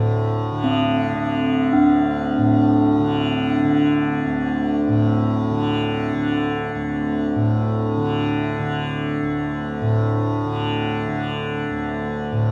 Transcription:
Already playing: D2 A2 D3
0.51 D3
0.64 C4
1.14 D3
1.73 D2 D4
2.38 A2
3.00 D3
3.64 D3
4.25 D2
4.88 A2
5.51 D3
6.13 D3
6.75 D2
7.35 A2
7.97 D3
8.59 D3
9.23 D2
9.81 A2
10.45 D3
11.08 D3
11.70 D2
12.32 A2

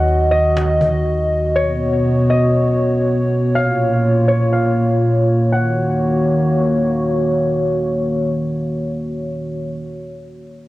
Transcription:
Already playing: D#2 D#3 F#4 D#5 F#5
0.07 cajon slap
0.31 D#5, cajon slap
0.44 cajon slap
0.57 cajon slap
0.81 cajon bass
1.06 cajon slap
1.55 B2 B3 F#4 C#5
2.30 D#5
3.54 A#2 A#3 F4 F5
4.28 C#5
4.53 F5
5.52 D#3 A#3 F#4 C#5 F#5

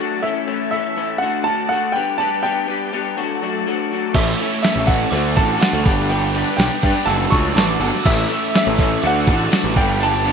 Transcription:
Already playing: F#3 A3 A4 F#5 D6
0.00 D4 F#4
0.22 A2 E3 A3 C#4 E4 E5 C#6
0.46 A2 E3 A3 C#4 E4
0.71 A2 E3 A3 C#4 E4 E5
0.96 A2 E3 A3 C#4 E4
1.18 D3 A3 D4 F#4 F#5
1.23 F#5 D6
1.44 D3 A3 D4 F#4 A5
1.69 D3 A3 D4 F#4 F#5
1.92 G3 B3 D4 B4 G5
1.96 G4
2.18 G3 B3 D4 G4 A5
2.43 G3 B3 D4 G4 G5
2.67 G3 B3 D4 G4
2.93 G3 B3 D4 G4
3.16 F#3 A3 D4 F#4 A4 F#5 D6
3.42 F#3 A3 D4 F#4
3.67 F#3 A3 D4 F#4
3.91 F#3 A3 D4 F#4
4.14 A1 A2 E3 A3 C#4 E4 E5 C#6, kick, crash
4.39 A2 E3 A3 C#4 E4, open hi-hat
4.62 A2 E3 A3 E4 E5, snare, open hi-hat
4.67 C#4
4.76 A1
4.80 E5
4.87 A2 E3 A3 C#4 E4 F#5, kick, open hi-hat
5.11 D2 D3 A3 D4 F#4 F#5 D6, open hi-hat
5.36 A1 D3 A3 D4 F#4 A5, kick, open hi-hat
5.60 D3 A3 D4 F#4 F#5 C#6, snare, open hi-hat
5.73 D2
5.84 G1 G3 B3 D4 G4 B4 G5 B5, kick, open hi-hat
6.09 G3 B3 D4 G4 G5, open hi-hat
6.34 G3 B3 D4 G4, open hi-hat
6.57 B1 G3 B3 D4 G4 G5, snare, open hi-hat
6.83 G2 G3 B3 D4 G4, kick, open hi-hat
7.06 F#1 F#3 A4 F#5 A5 E6, open hi-hat
7.10 A3 D4 F#4
7.30 C#2 F#3 A3 D4 F#4 C#6, kick, open hi-hat
7.55 A1 F#3 A3 D4 F#4 A5 D6, snare, open hi-hat
7.80 G1 F#3 A3 D4 F#4, open hi-hat
7.95 snare
8.04 A1 A2 E3 A3 C#4 E4 E5 C#6 E6, kick, crash
8.08 E5
8.29 A2 E3 A3 C#4 E4, open hi-hat
8.54 A2 E3 A3 C#4 E4 E5, snare, open hi-hat
8.67 A1
8.79 A2 E3 A3 C#4 E4, kick, open hi-hat
9.01 D2 D3 A3 D4 F#4 F#5 D6, open hi-hat
9.07 F#5
9.27 A1 D3 A3 D4 F#4, kick, open hi-hat
9.51 D3 A3 D4 F#4, snare, open hi-hat
9.64 A1
9.76 G1 G3 B3 D4 G4 B4 G5 B5, kick, open hi-hat
10.00 G3 B3 D4 G4 A5, open hi-hat
10.25 G3 B3 D4 G4, open hi-hat

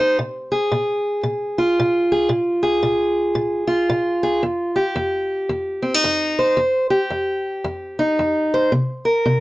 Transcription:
Already playing: F2 D#4
0.00 C5
0.19 A#2
0.52 G#4
0.72 A#2
1.23 A#2
1.58 F4
1.79 A#2
2.12 G#4
2.29 A#2
2.63 G#4
2.83 A#2
3.35 A#2
3.67 F4
3.89 A#2
4.23 G#4
4.43 F2
4.76 G4
4.96 F2
5.49 F2
5.82 C4
5.94 D#4
6.04 F2
6.39 C5
6.57 F2
6.90 G4
7.10 F2
7.64 F2
7.99 D#4
8.19 F2
8.54 C5
8.72 C3
9.05 A#4
9.26 C3

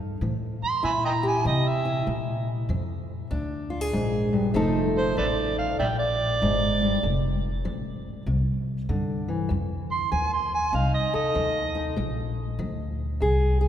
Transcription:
Already playing: G2 C3
0.21 A2 E3
0.63 C6, muted upright bass stroke
0.83 G2 A#2 E4 E5 G#5 B5
1.05 D#5 G5 A#5
1.23 G4
1.27 G#5
1.44 C3 E3 D#5
1.68 E5
1.85 E4
2.07 A#2
2.69 F2 F3
3.31 D2 F2 D4
3.70 F4
3.81 G#4
3.93 A#1 G#2
4.33 G2
4.54 F1 F2 F3 A3 D#4 A4
4.98 C5
5.17 A1 F3 A4 B4 D5
5.58 F5
5.79 A#1 A#2 D5 E5 G5
5.99 D5
6.42 G1 G#2
6.82 G2
7.03 F1 F2
7.65 A1 F3
8.26 C2 C3
8.89 G2 D3
9.28 E3
9.49 F2
9.91 C6
10.12 D#2 F3 G#5
10.33 C6
10.54 G#5
10.73 C2 C3 D#4 F5
10.94 D#5
11.13 A4 D#5, muted upright bass stroke
11.35 D#2 F3
11.75 D#4
11.96 A#1 A#2
12.59 D2 F3
13.20 C2 F2 G#4
13.61 G#4

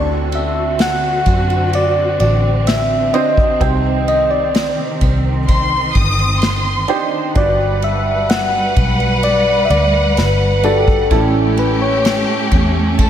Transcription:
Already playing: D2 D3 C4 D4 F#4 A4
0.32 E5, ride
0.79 F#5, snare, ride
1.26 F#2, kick, ride
1.50 ride
1.73 D5, ride
2.20 A1 D5, ride
2.67 E5, snare, ride
3.13 C4 D4 F#4 C5 D#5, ride
3.37 kick
3.60 C2 C3 D#3 C4 D#4 G4 C5, kick, ride
4.08 D#5, ride
4.30 D5
4.55 snare, ride
5.01 C2, kick, ride
5.48 C6, kick, ride
5.95 G1 D#6, kick, ride
6.19 ride
6.42 C6, snare, ride
6.88 D4 D#4 G4 C5, ride
7.35 G1 G2 G3 D4 F#4 G4 B4 D5 F#5, kick, ride
7.82 E5, ride
8.29 F#5, snare, ride
8.76 B1, kick, ride
9.00 ride
9.23 D5, ride
9.65 E5
9.70 D2 D5, ride
10.17 G1 B4, snare, ride
10.63 D4 F#4 G4 A4 D5, ride
10.88 kick
11.11 A1 A2 A3 C#4 E4 G4 A4, kick, ride
11.57 B4, ride
11.82 C#5
12.05 snare, ride
12.51 E2, kick, ride
12.98 A4 A5, kick, ride

